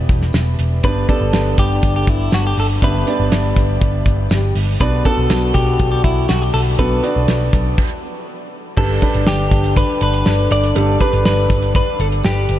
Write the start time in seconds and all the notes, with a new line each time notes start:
Already playing: E3 B3 E4 G4 D5 E5
0.09 E1, kick, closed hi-hat
0.21 snare
0.33 E1, snare, closed hi-hat, tambourine
0.59 E1, closed hi-hat
0.84 G1 G2 D3 B3 D4 G4 B4 D5, kick, closed hi-hat
1.08 B3 D4 G4 A4 D5, kick, closed hi-hat
1.21 G1
1.33 G1, snare, closed hi-hat, tambourine
1.58 G1 G4, kick, closed hi-hat
1.83 G1, kick, closed hi-hat
1.96 G4
2.07 G1 E4, kick, closed hi-hat
2.31 G1 F#4, snare, closed hi-hat, tambourine
2.47 G4
2.57 G1 A4, open hi-hat
2.82 G1 G2 B3 D4 G4 B4 E5, kick, closed hi-hat
3.07 B3 D4 G4 D5, closed hi-hat
3.20 G1
3.32 G1, snare, closed hi-hat, tambourine
3.56 G1, kick, closed hi-hat
3.81 G1, kick, closed hi-hat
4.06 G1, kick, closed hi-hat
4.30 G1 G3 G4, snare, closed hi-hat, tambourine
4.55 G1, open hi-hat
4.80 B1 B2 D3 B3 D4 F#4 B4 D5, kick, closed hi-hat
5.05 B3 D4 A4 F#5, kick, closed hi-hat
5.18 B1
5.30 B1, snare, closed hi-hat, tambourine
5.54 B1 G4, kick, closed hi-hat
5.79 B1, kick, closed hi-hat
5.92 G4
6.04 B1 E4, kick, closed hi-hat
6.28 B1 F#4, snare, closed hi-hat, tambourine
6.42 G4
6.54 B1 A4, open hi-hat
6.78 B1 B2 B3 D4 F#4 A4 B4, kick, closed hi-hat
7.03 B3 D4 F#4 D5, closed hi-hat
7.16 B1
7.28 B1, snare, closed hi-hat, tambourine
7.53 B1, kick, closed hi-hat
7.78 kick, crash
8.77 G1 G2 D3 D4 G4 A4 B4, kick, crash
9.02 D4 G4 B4, kick, closed hi-hat
9.14 G1, closed hi-hat
9.27 G1 G4, snare, tambourine
9.51 G1, kick, closed hi-hat
9.64 closed hi-hat
9.76 B4, kick, closed hi-hat
10.01 G1 B4, closed hi-hat
10.14 closed hi-hat
10.25 G1, snare, tambourine
10.39 closed hi-hat
10.51 G1 D5, closed hi-hat
10.64 closed hi-hat
10.75 G1 G2 D4 G4 A4, closed hi-hat
11.00 D4 G4 B4, kick, closed hi-hat
11.13 G1, closed hi-hat
11.25 G1 B4, snare, tambourine
11.50 G1, kick, closed hi-hat
11.62 closed hi-hat
11.75 B4, kick, closed hi-hat
12.00 G1 A4, closed hi-hat
12.12 closed hi-hat
12.23 G1 G4, snare, tambourine
12.49 G1, closed hi-hat